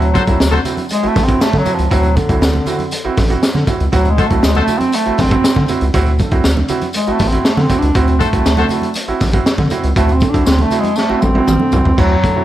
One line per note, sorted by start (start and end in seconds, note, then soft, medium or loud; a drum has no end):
0.00 0.17 D2 loud
0.00 0.53 F#3 medium
0.00 closed hi-hat soft
0.14 0.30 D3 medium
0.14 0.30 A3 medium
0.14 0.22 F#4 loud
0.14 0.22 A4 medium
0.14 0.22 C5 loud
0.14 kick medium
0.14 closed hi-hat medium
0.14 tambourine soft
0.14 high conga medium
0.27 0.37 C2 loud
0.27 0.42 C4 medium
0.27 0.39 E4 medium
0.27 0.39 F#4 medium
0.27 kick medium
0.27 closed hi-hat medium
0.40 0.59 D2 medium
0.40 0.45 E4 soft
0.40 0.45 F#4 soft
0.40 snare loud
0.40 tambourine loud
0.40 muted conga soft
0.51 0.68 D3 medium
0.51 0.67 A3 medium
0.51 0.60 F#4 loud
0.51 0.60 A4 loud
0.51 0.60 C5 loud
0.51 closed hi-hat soft
0.51 high conga medium
0.51 low conga medium
0.65 0.80 C4 medium
0.65 0.80 E4 medium
0.65 0.80 F#4 medium
0.65 closed hi-hat medium
0.65 tambourine medium
0.65 low conga medium
0.77 closed hi-hat soft
0.77 high conga medium
0.89 1.09 G#3 loud
0.89 closed hi-hat loud
0.89 tambourine medium
0.89 muted conga soft
1.03 1.09 A1 soft
1.03 1.18 C4 medium
1.03 1.18 E4 medium
1.03 1.18 F#4 medium
1.03 closed hi-hat soft
1.03 muted conga soft
1.08 1.26 A3 loud
1.16 1.35 A1 loud
1.16 1.30 D3 medium
1.16 1.30 A3 medium
1.16 kick loud
1.16 snare soft
1.16 open hi-hat medium
1.16 tambourine medium
1.16 high conga medium
1.24 1.43 C4 loud
1.24 1.43 C4 medium
1.24 1.39 E4 medium
1.24 1.39 F#4 medium
1.29 kick loud
1.29 closed hi-hat medium
1.40 1.59 A3 loud
1.40 1.46 E4 soft
1.40 1.46 F#4 soft
1.40 snare loud
1.40 tambourine loud
1.40 muted conga soft
1.53 1.68 D3 medium
1.53 1.63 D3 loud
1.53 1.68 A3 medium
1.53 kick medium
1.53 snare soft
1.53 closed hi-hat soft
1.53 high conga medium
1.58 1.76 F#3 loud
1.66 1.81 C4 medium
1.66 1.81 E4 medium
1.66 1.81 F#4 medium
1.66 closed hi-hat medium
1.66 tambourine medium
1.66 low conga medium
1.75 1.93 F3 loud
1.75 closed hi-hat medium
1.79 1.88 C#2 medium
1.91 2.19 D2 loud
1.91 2.18 F#3 medium
1.91 2.06 C4 loud
1.91 2.06 E4 medium
1.91 2.06 F#4 loud
1.91 kick medium
1.91 closed hi-hat medium
2.03 closed hi-hat soft
2.03 muted conga soft
2.16 2.31 D3 medium
2.16 2.92 D3 loud
2.16 2.31 A3 medium
2.16 kick medium
2.16 closed hi-hat medium
2.16 tambourine soft
2.16 high conga medium
2.29 2.39 C2 loud
2.29 2.44 C4 medium
2.29 2.40 E4 medium
2.29 2.40 F#4 medium
2.29 kick medium
2.29 closed hi-hat medium
2.41 2.60 D2 medium
2.41 2.47 E4 soft
2.41 2.47 F#4 soft
2.41 snare loud
2.41 tambourine loud
2.41 muted conga soft
2.54 2.69 D3 medium
2.54 2.69 A3 medium
2.54 closed hi-hat soft
2.54 muted conga soft
2.54 high conga medium
2.54 low conga medium
2.66 2.82 C4 medium
2.66 2.82 E4 medium
2.66 2.82 F#4 medium
2.66 closed hi-hat medium
2.66 tambourine medium
2.66 low conga medium
2.79 closed hi-hat soft
2.79 high conga medium
2.91 closed hi-hat loud
2.91 tambourine medium
2.91 muted conga soft
3.05 3.10 A1 soft
3.05 3.19 C4 medium
3.05 3.20 E4 medium
3.05 3.20 F#4 medium
3.17 3.36 A1 loud
3.17 3.32 D3 medium
3.17 3.32 A3 medium
3.17 kick loud
3.17 snare soft
3.17 open hi-hat medium
3.17 tambourine soft
3.17 high conga medium
3.30 3.45 C4 medium
3.30 3.41 E4 medium
3.30 3.41 F#4 medium
3.30 closed hi-hat medium
3.42 3.47 E4 soft
3.42 3.47 F#4 soft
3.42 snare loud
3.42 tambourine medium
3.42 muted conga soft
3.55 3.64 D3 loud
3.55 3.70 D3 medium
3.55 3.70 A3 medium
3.55 snare soft
3.55 closed hi-hat soft
3.55 high conga medium
3.67 3.82 C4 medium
3.67 3.82 E4 medium
3.67 3.82 F#4 medium
3.67 kick medium
3.67 closed hi-hat medium
3.67 tambourine soft
3.67 low conga medium
3.80 3.90 C#2 medium
3.80 closed hi-hat medium
3.92 4.21 D2 loud
3.92 4.11 F#3 medium
3.92 4.07 C4 medium
3.92 4.07 E4 medium
3.92 4.08 F#4 loud
3.92 kick loud
3.92 closed hi-hat medium
3.92 tambourine soft
3.92 muted conga soft
4.05 closed hi-hat soft
4.05 muted conga soft
4.10 4.28 G#3 medium
4.18 4.33 D3 medium
4.18 4.33 A3 medium
4.18 4.26 F#4 medium
4.18 4.26 A4 medium
4.18 4.26 C5 loud
4.18 kick medium
4.18 closed hi-hat medium
4.18 high conga medium
4.27 4.45 A3 medium
4.27 4.45 C4 medium
4.27 4.41 E4 medium
4.27 closed hi-hat medium
4.31 4.40 C2 loud
4.31 4.42 F#4 medium
4.31 kick medium
4.43 4.62 D2 medium
4.43 4.60 G#3 medium
4.43 4.48 E4 soft
4.43 4.48 F#4 soft
4.43 snare loud
4.43 tambourine loud
4.55 4.70 D3 medium
4.55 4.71 A3 medium
4.55 4.63 F#4 loud
4.55 4.63 A4 loud
4.55 4.63 C5 loud
4.55 closed hi-hat soft
4.55 muted conga soft
4.55 high conga medium
4.55 low conga medium
4.61 4.80 A3 loud
4.68 4.83 C4 medium
4.68 4.83 E4 medium
4.68 4.83 F#4 medium
4.68 closed hi-hat medium
4.68 tambourine medium
4.68 low conga medium
4.78 4.97 C4 loud
4.78 closed hi-hat medium
4.78 high conga medium
4.92 5.19 A3 loud
4.92 closed hi-hat loud
4.92 tambourine medium
5.05 5.12 A1 soft
5.05 5.21 C4 medium
5.05 5.21 E4 medium
5.05 5.21 F#4 medium
5.05 closed hi-hat soft
5.05 muted conga soft
5.18 5.37 A1 loud
5.18 5.34 D3 medium
5.18 5.34 A3 medium
5.18 5.91 C4 loud
5.18 kick loud
5.18 snare soft
5.18 open hi-hat medium
5.18 tambourine medium
5.18 high conga medium
5.31 5.46 C4 medium
5.31 5.43 E4 medium
5.31 5.43 F#4 medium
5.31 kick loud
5.31 closed hi-hat medium
5.44 5.49 E4 soft
5.44 5.49 F#4 soft
5.44 snare loud
5.44 tambourine loud
5.44 muted conga soft
5.56 5.66 D3 loud
5.56 5.71 D3 medium
5.56 5.71 A3 medium
5.56 kick medium
5.56 snare soft
5.56 high conga medium
5.68 5.84 C4 medium
5.68 5.84 E4 medium
5.68 5.84 F#4 medium
5.68 closed hi-hat medium
5.68 tambourine soft
5.68 low conga medium
5.81 5.91 C#2 medium
5.81 closed hi-hat medium
5.94 6.22 D2 loud
5.94 6.09 C4 loud
5.94 6.09 E4 medium
5.94 6.09 F#4 loud
5.94 kick loud
5.94 closed hi-hat medium
5.94 tambourine soft
6.06 closed hi-hat soft
6.19 6.34 D3 medium
6.19 6.34 A3 medium
6.19 kick medium
6.19 closed hi-hat medium
6.19 tambourine soft
6.19 high conga medium
6.31 6.41 C2 loud
6.31 6.47 C4 medium
6.31 6.43 E4 medium
6.31 6.43 F#4 medium
6.31 kick medium
6.31 closed hi-hat medium
6.44 6.63 D2 medium
6.44 6.49 E4 soft
6.44 6.49 F#4 soft
6.44 snare loud
6.44 tambourine loud
6.56 6.72 D3 medium
6.56 6.72 A3 medium
6.56 closed hi-hat soft
6.56 high conga medium
6.56 low conga medium
6.68 6.84 C4 medium
6.68 6.84 E4 medium
6.68 6.84 F#4 medium
6.68 closed hi-hat medium
6.68 tambourine medium
6.68 low conga medium
6.81 closed hi-hat medium
6.81 high conga medium
6.93 7.13 G#3 medium
6.93 closed hi-hat loud
6.93 tambourine medium
6.93 muted conga soft
7.07 7.13 A1 soft
7.07 7.22 C4 medium
7.07 7.22 E4 medium
7.07 7.22 F#4 medium
7.07 closed hi-hat soft
7.07 muted conga soft
7.12 7.30 A3 medium
7.19 7.38 A1 loud
7.19 7.35 D3 medium
7.19 7.35 A3 medium
7.19 kick loud
7.19 snare soft
7.19 open hi-hat medium
7.19 tambourine medium
7.19 high conga medium
7.28 7.47 C4 medium
7.28 7.43 E4 medium
7.28 closed hi-hat medium
7.33 7.43 F#4 medium
7.45 7.63 A3 medium
7.45 7.50 E4 soft
7.45 7.50 F#4 soft
7.45 snare loud
7.45 tambourine medium
7.45 muted conga soft
7.57 7.67 D3 loud
7.57 7.72 D3 medium
7.57 7.72 A3 medium
7.57 snare soft
7.57 closed hi-hat soft
7.57 muted conga soft
7.57 high conga medium
7.62 7.80 C4 loud
7.69 7.85 C4 medium
7.69 7.85 E4 medium
7.69 7.85 F#4 medium
7.69 kick medium
7.69 closed hi-hat medium
7.69 tambourine soft
7.69 low conga medium
7.78 7.97 D4 loud
7.78 closed hi-hat medium
7.83 7.92 C#2 loud
7.95 8.23 D2 loud
7.95 8.10 C4 medium
7.95 8.22 C4 loud
7.95 8.10 E4 medium
7.95 8.10 F#4 loud
7.95 kick loud
7.95 closed hi-hat medium
7.95 muted conga soft
8.08 closed hi-hat soft
8.08 muted conga soft
8.19 8.35 D3 medium
8.19 8.96 A3 medium
8.19 8.35 A3 medium
8.19 8.28 F#4 loud
8.19 8.28 A4 loud
8.19 8.28 C5 loud
8.19 kick medium
8.19 closed hi-hat medium
8.19 tambourine soft
8.19 high conga medium
8.33 8.43 C2 medium
8.33 8.48 C4 medium
8.33 8.44 E4 medium
8.33 8.44 F#4 medium
8.33 kick medium
8.33 closed hi-hat medium
8.46 8.64 D2 medium
8.46 8.51 E4 soft
8.46 8.51 F#4 soft
8.46 snare loud
8.46 tambourine loud
8.57 8.73 D3 medium
8.57 8.73 A3 medium
8.57 8.66 F#4 loud
8.57 8.66 A4 medium
8.57 8.66 C5 loud
8.57 closed hi-hat soft
8.57 muted conga soft
8.57 high conga medium
8.57 low conga medium
8.69 8.86 C4 medium
8.69 8.86 E4 medium
8.69 8.86 F#4 medium
8.69 closed hi-hat medium
8.69 tambourine medium
8.69 low conga medium
8.82 closed hi-hat medium
8.82 high conga medium
8.94 closed hi-hat loud
8.94 tambourine medium
8.94 muted conga soft
9.08 9.13 A1 medium
9.08 9.23 C4 medium
9.08 9.23 E4 medium
9.08 9.23 F#4 medium
9.08 closed hi-hat soft
9.20 9.40 A1 loud
9.20 9.36 D3 medium
9.20 9.36 A3 medium
9.20 kick loud
9.20 snare soft
9.20 open hi-hat medium
9.20 tambourine medium
9.20 high conga medium
9.33 9.48 C4 medium
9.33 9.45 E4 medium
9.33 9.45 F#4 medium
9.33 kick loud
9.33 closed hi-hat medium
9.46 9.51 E4 soft
9.46 9.51 F#4 soft
9.46 snare loud
9.46 tambourine loud
9.58 9.68 D3 loud
9.58 9.74 D3 medium
9.58 9.74 A3 medium
9.58 kick medium
9.58 snare soft
9.58 closed hi-hat soft
9.58 muted conga soft
9.58 high conga medium
9.70 9.86 C4 medium
9.70 9.86 E4 medium
9.70 9.86 F#4 medium
9.70 closed hi-hat medium
9.70 tambourine soft
9.70 low conga medium
9.83 9.93 C#2 medium
9.83 closed hi-hat medium
9.96 10.24 D2 loud
9.96 10.14 A3 medium
9.96 10.11 C4 medium
9.96 10.11 E4 medium
9.96 10.12 F#4 loud
9.96 kick loud
9.96 closed hi-hat medium
9.96 tambourine soft
10.08 closed hi-hat soft
10.08 muted conga soft
10.13 10.31 C4 loud
10.20 10.37 D3 medium
10.20 10.37 A3 medium
10.20 kick medium
10.20 closed hi-hat medium
10.20 tambourine soft
10.20 high conga medium
10.30 10.47 D4 loud
10.34 10.44 C2 medium
10.34 10.49 C4 medium
10.34 10.45 E4 medium
10.34 10.45 F#4 medium
10.34 kick medium
10.34 closed hi-hat medium
10.46 10.66 D2 medium
10.46 10.64 C4 medium
10.46 10.52 E4 soft
10.46 10.52 F#4 soft
10.46 snare loud
10.46 tambourine loud
10.46 muted conga soft
10.58 10.74 D3 medium
10.58 10.74 A3 medium
10.58 10.81 A3 loud
10.58 closed hi-hat soft
10.58 muted conga soft
10.58 high conga medium
10.58 low conga medium
10.71 10.87 C4 medium
10.71 10.87 E4 medium
10.71 10.87 F#4 medium
10.71 closed hi-hat medium
10.71 tambourine medium
10.71 low conga medium
10.79 10.98 G#3 loud
10.84 closed hi-hat medium
10.84 high conga medium
10.96 11.23 A3 medium
10.96 snare medium
10.96 tambourine medium
11.09 11.15 A1 soft
11.09 11.24 C4 medium
11.09 11.25 E4 medium
11.09 11.25 F#4 medium
11.09 muted conga soft
11.21 11.41 A1 medium
11.21 11.37 D3 medium
11.21 11.37 A3 medium
11.21 11.97 C4 loud
11.21 high tom medium
11.21 tambourine medium
11.21 high conga medium
11.34 11.50 C4 medium
11.34 11.46 E4 medium
11.34 11.46 F#4 medium
11.34 high tom medium
11.47 11.57 A1 loud
11.47 11.53 E4 soft
11.47 11.53 F#4 soft
11.47 mid tom medium
11.47 tambourine loud
11.47 high conga medium
11.60 11.75 D3 medium
11.60 11.75 A3 medium
11.60 muted conga soft
11.60 high conga medium
11.72 11.83 C2 medium
11.72 11.87 C4 medium
11.72 11.88 E4 medium
11.72 11.88 F#4 medium
11.72 floor tom loud
11.72 tambourine medium
11.72 low conga medium
11.85 11.95 C#2 loud
11.85 floor tom loud
11.97 12.17 D2 loud
11.97 12.45 F#3 loud
11.97 12.13 C4 medium
11.97 12.13 E4 medium
11.97 12.13 F#4 loud
11.97 kick loud
11.97 crash medium
11.97 tambourine soft
12.23 12.38 D3 medium
12.23 12.38 A3 medium
12.23 kick medium
12.23 closed hi-hat medium
12.35 12.41 C3 soft
12.35 12.45 C4 medium
12.35 12.45 E4 medium
12.35 12.45 F#4 medium